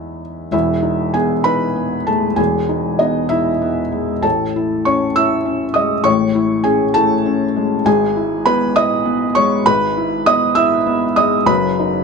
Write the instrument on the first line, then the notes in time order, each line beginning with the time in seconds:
felt piano
Already playing: E2 G#3 B3 D#4 E5
0.51 E1 E2 E4 E5
0.83 D#4
1.14 B3 G#4 G#5
1.44 D#4 B4 B5
1.76 B3
2.07 G#3 A3 A5
2.36 E1 E2 G#4 G#5
2.69 D#4
2.99 B3 D#4 D#5
3.29 D#4 E4 E5
3.62 B3
3.92 G#3
4.22 A1 A2 A4 A5
4.56 E4
4.85 C#4 C#5 C#6
5.16 E4 E5 E6
5.45 C#4
5.74 G#3 D#5 D#6
6.04 A1 A2 C#5 C#6
6.35 E4
6.64 C#4 G#4 G#5
6.94 A3 E4 A5
7.26 C#4
7.56 G#3
7.85 G#1 G#2 G#4 G#5
8.16 E4
8.46 B3 B4 B5
8.76 E4 D#5 D#6
9.05 B3
9.35 G#3 C#5 C#6
9.65 G#1 G#2 B4 B5
9.97 E4
10.26 B3 D#5 D#6
10.55 E4 E5 E6
10.86 B3
11.16 G#3 D#5 D#6
11.46 F#1 F#2 B4 B5
11.80 D#4